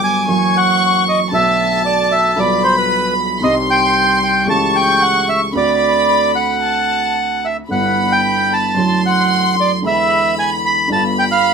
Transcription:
Already playing: grand piano G1 G2 D3 F#3 G3 B3, violin section D6
0.04 bandoneon G#5
0.27 grand piano F#2 E3 F#3 A#3 C#4, violin section C#6
0.31 grand piano F#4
0.57 bandoneon F#5
1.09 bandoneon D#5
1.31 grand piano B1 B2 D3 A3 B3, bandoneon E5, violin section A5
1.35 grand piano F#4
1.86 bandoneon D5
2.12 bandoneon E5
2.35 grand piano B1 B2 D3 G3 B3 F4, bandoneon D5, violin section B5
2.64 bandoneon C5
2.77 bandoneon B4
3.40 grand piano C2 C3 D#3 G3 C4, bandoneon D#5, violin section C6
3.45 grand piano G4
3.70 bandoneon G5
4.23 bandoneon G5
4.47 grand piano C#2 C#3 E3 A3 C#4 G4, bandoneon A5, violin section C#6
4.76 bandoneon G5
5.02 bandoneon F#5
5.29 bandoneon E5
5.53 grand piano D2 D3 A3 C4 F#4, violin section B5
5.57 bandoneon D5
6.36 bandoneon F#5
6.63 violin section A5
7.45 bandoneon E5
7.69 grand piano G1 G2 D3 G3 B3 E4, bandoneon F#5, violin section B5
8.12 bandoneon G5
8.53 bandoneon A5
8.75 grand piano F#2 D3 F#3 A3 E4, violin section C6
9.06 bandoneon F#5
9.60 bandoneon D5
9.82 grand piano E2 D3 E3 G#3 B3
9.86 grand piano E4, bandoneon E5, violin section B5
10.39 bandoneon G#5
10.66 bandoneon B5
10.88 grand piano G1 G2 D3 G3 B3 F4, violin section B5
10.92 bandoneon A5
11.19 bandoneon G5
11.32 bandoneon F5

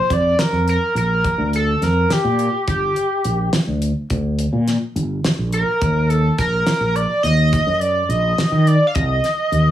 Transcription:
Already playing: analog synth lead C5
0.10 fretless electric bass F2, analog synth lead D5, kick, closed hi-hat
0.39 analog synth lead A#4, snare, closed hi-hat
0.52 fretless electric bass F2
0.68 analog synth lead A#4, closed hi-hat
0.95 fretless electric bass A#1, analog synth lead A#4, closed hi-hat
1.24 kick, closed hi-hat
1.38 fretless electric bass D2
1.53 analog synth lead A4, closed hi-hat
1.82 fretless electric bass F2, analog synth lead A#4, snare, closed hi-hat
2.10 analog synth lead G4, snare, closed hi-hat
2.24 fretless electric bass A#2
2.39 closed hi-hat
2.68 fretless electric bass G1, analog synth lead G4, kick, closed hi-hat
2.96 closed hi-hat
3.24 fretless electric bass A#1, closed hi-hat
3.53 snare, closed hi-hat
3.67 fretless electric bass D2
3.82 closed hi-hat
4.10 fretless electric bass D2, kick, closed hi-hat
4.39 closed hi-hat
4.53 fretless electric bass A#2
4.68 snare, closed hi-hat
4.96 fretless electric bass G1, closed hi-hat
5.24 snare, closed hi-hat
5.39 fretless electric bass A#1
5.53 analog synth lead A#4, closed hi-hat
5.81 fretless electric bass D#2, kick, closed hi-hat
6.09 analog synth lead A4, closed hi-hat
6.38 fretless electric bass A#1, analog synth lead A#4, kick, snare, closed hi-hat
6.67 snare, closed hi-hat
6.80 fretless electric bass A#1
6.95 analog synth lead D5, closed hi-hat
7.23 fretless electric bass D#2, analog synth lead D#5, snare, closed hi-hat
7.53 kick, closed hi-hat
7.67 fretless electric bass F#2
7.80 analog synth lead D5, closed hi-hat
8.09 fretless electric bass A#1, analog synth lead D#5, closed hi-hat
8.38 snare, closed hi-hat
8.52 fretless electric bass D#3
8.67 analog synth lead D5, closed hi-hat
8.87 analog synth lead F5
8.95 fretless electric bass C2, analog synth lead D#5, kick, closed hi-hat
9.24 snare, closed hi-hat
9.52 fretless electric bass D#2, closed hi-hat

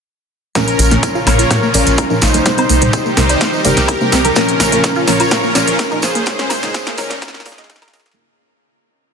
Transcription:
0.55 synth stab A#2 F3 C#4 A#4, supersaw synth A#2 C#3 F3 C#4 F4 A#4, synth pluck A#3, kick, snare, closed hi-hat, tambourine
0.68 closed hi-hat, tambourine, high woodblock
0.79 analog synth bass A#1, open hi-hat, tambourine
0.91 synth stab A#2 F3 C#4 A#4, synth pluck A#3, snare, closed hi-hat, tambourine
1.03 kick, closed hi-hat, tambourine
1.15 synth pluck F4, tambourine
1.27 analog synth bass A#1, synth pluck A#2, synth stab A#2 F3 C#4 A#4, supersaw synth A#4 C#5, snare, open hi-hat, tambourine, high woodblock
1.39 synth pluck F4, closed hi-hat, tambourine
1.50 synth pluck A#2, kick, snare, closed hi-hat, tambourine
1.63 synth pluck A#3, tambourine
1.74 analog synth bass A#1, synth stab A#2 F3 C#4 A#4, supersaw synth C#4 A#4, open hi-hat, tambourine, cowbell
1.87 analog synth bass A#1, closed hi-hat, tambourine
1.98 kick, closed hi-hat, tambourine, high woodblock
2.10 synth stab A#2 F3 C#4 A#4, synth pluck D#4, tambourine
2.21 analog synth bass A#1, supersaw synth D#4 C5, snare, open hi-hat, tambourine
2.34 synth pluck A#3, closed hi-hat, tambourine, high conga
2.46 synth stab C3 G3 D#4 C5, supersaw synth C3 D#3 G3 D#4 G4, kick, snare, closed hi-hat, tambourine
2.57 synth pluck C4, closed hi-hat, tambourine, high woodblock
2.69 analog synth bass C2, synth pluck A#3, open hi-hat, tambourine
2.81 synth pluck A#2, synth stab C3 G3 D#4 C5, closed hi-hat, tambourine
2.93 kick, closed hi-hat, tambourine
3.06 synth pluck A#3, tambourine
3.17 analog synth bass C2, synth stab C3 G3 D#4 C5, supersaw synth D#4 C5, synth pluck A#4, snare, open hi-hat, tambourine
3.29 closed hi-hat, tambourine, cowbell, high woodblock
3.41 kick, snare, closed hi-hat, tambourine
3.53 tambourine
3.64 analog synth bass G1, synth stab C3 G3 D#4 C5, synth pluck A#3, supersaw synth G4 A#4, open hi-hat, tambourine, cowbell
3.77 analog synth bass C2, snare, closed hi-hat, tambourine
3.88 kick, closed hi-hat, tambourine, high woodblock
4.01 synth stab C3 G3 D#4 C5, synth pluck A#3, tambourine
4.12 analog synth bass C2, synth pluck C4, snare, open hi-hat, tambourine
4.25 synth pluck A#4, closed hi-hat, tambourine, high conga
4.35 supersaw synth A#2 C#3 F3 C#4 F4 A#4, synth stab A#2 F3 C#4 A#4, synth pluck A#3, kick, snare, closed hi-hat, tambourine
4.48 closed hi-hat, tambourine
4.60 analog synth bass A#1, snare, open hi-hat, tambourine, high woodblock
4.72 synth stab A#2 F3 C#4 A#4, synth pluck A#3, closed hi-hat, tambourine
4.84 kick, snare, closed hi-hat, tambourine
4.95 synth pluck F4, tambourine
5.07 analog synth bass A#1, synth stab A#2 F3 C#4 A#4, synth pluck A#2, supersaw synth A#4 C#5, snare, open hi-hat, tambourine
5.20 synth pluck F4, closed hi-hat, tambourine, high woodblock
5.31 synth pluck A#2, kick, snare, closed hi-hat, tambourine
5.44 synth pluck A#3, tambourine
5.55 analog synth bass A#1, synth stab A#2 F3 C#4 A#4, supersaw synth C#4 A#4, snare, open hi-hat, tambourine, cowbell
5.67 analog synth bass A#1, closed hi-hat, tambourine
5.79 kick, snare, closed hi-hat, tambourine
5.91 synth stab A#2 F3 C#4 A#4, synth pluck D#4, tambourine, high woodblock
6.02 analog synth bass A#1, supersaw synth G#4 C5, snare, open hi-hat, tambourine
6.15 synth pluck A#3, closed hi-hat, tambourine, high conga
6.26 supersaw synth G#2 D#3 C#4 D#4, synth stab C#3 G#3 D#4 C#5, kick, snare, closed hi-hat, tambourine
6.39 synth pluck C#4, snare, closed hi-hat, tambourine
6.49 analog synth bass C#2, synth pluck A#3, snare, open hi-hat, tambourine, high woodblock
6.63 synth pluck A#2, synth stab C#3 G#3 D#4 C#5, snare, closed hi-hat, tambourine
6.74 kick, snare, closed hi-hat, tambourine
6.87 synth pluck A#3, snare, closed hi-hat, tambourine
6.98 analog synth bass C#2, synth stab C#3 G#3 D#4 C#5, supersaw synth C#4 A#4, synth pluck A#4, snare, open hi-hat, tambourine
7.10 snare, closed hi-hat, tambourine, cowbell
7.22 kick, snare, closed hi-hat, tambourine, high woodblock
7.28 snare
7.34 snare, tambourine
7.40 snare
7.45 analog synth bass C#2, synth pluck A#3, supersaw synth F4 G#4, snare, open hi-hat, tambourine, cowbell
7.52 snare
7.58 analog synth bass C#2, synth stab C#3 G#3 D#4 D#5, snare, closed hi-hat, tambourine
7.64 snare
7.69 synth pluck D#4, kick, snare, closed hi-hat, tambourine
7.76 snare
7.82 synth pluck A#4, snare, closed hi-hat, tambourine, high woodblock
7.88 snare
7.93 analog synth bass C#2, synth stab C#3 G#3 D#4 C#5, synth pluck A#4, snare, open hi-hat, tambourine
8.00 snare
8.05 synth pluck A#3, snare, closed hi-hat, tambourine
8.12 snare

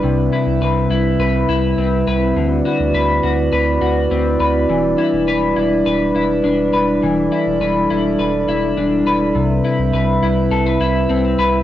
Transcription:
Already playing: clean electric guitar E3 E4 B4, glass harmonica G3 E4 B4
0.03 sub bass C2, clean electric guitar C3, glass harmonica C4 E5
0.33 clean electric guitar E4
0.46 sub bass C2
0.61 sub bass C2, clean electric guitar B4
0.90 sub bass C2, clean electric guitar E4
1.19 sub bass C2, clean electric guitar B4
1.49 sub bass C2, clean electric guitar E4
1.78 sub bass C2, clean electric guitar C4
2.07 sub bass C2, clean electric guitar B4
2.35 sub bass D2, clean electric guitar D3, glass harmonica F#4 D5
2.65 clean electric guitar F#4
2.80 sub bass D2
2.94 sub bass D2, clean electric guitar B4
3.23 sub bass D2, clean electric guitar F#4
3.52 sub bass D2, clean electric guitar B4
3.81 sub bass D2, clean electric guitar F#4
4.11 sub bass D2, clean electric guitar C4
4.40 sub bass D2, clean electric guitar B4
4.68 sub bass E1, clean electric guitar E3, glass harmonica G3 D4
4.98 clean electric guitar E4
5.13 sub bass E1
5.27 sub bass E1, clean electric guitar B4
5.56 sub bass E1, clean electric guitar E4
5.86 sub bass E1, clean electric guitar B4
6.15 sub bass E1, clean electric guitar E4
6.44 sub bass E1, clean electric guitar D4
6.73 sub bass E1, clean electric guitar B4
7.03 sub bass E1, clean electric guitar E3, glass harmonica A4
7.32 clean electric guitar E4
7.46 sub bass E1
7.60 sub bass E1, clean electric guitar B4
7.90 sub bass E1, clean electric guitar E4
8.19 sub bass E1, clean electric guitar B4
8.48 sub bass E1, clean electric guitar E4
8.77 sub bass E1, clean electric guitar D4
9.06 sub bass E1, clean electric guitar B4
9.35 sub bass C2, clean electric guitar C3, glass harmonica C4 E4 B4 E5
9.64 clean electric guitar E4
9.79 sub bass C2
9.93 sub bass C2, clean electric guitar B4
10.23 sub bass C2, clean electric guitar E4
10.51 sub bass C2, clean electric guitar A4
10.66 clean electric guitar B4
10.80 sub bass C2, clean electric guitar E4
11.09 sub bass C2, clean electric guitar C4
11.38 sub bass C2, clean electric guitar B4

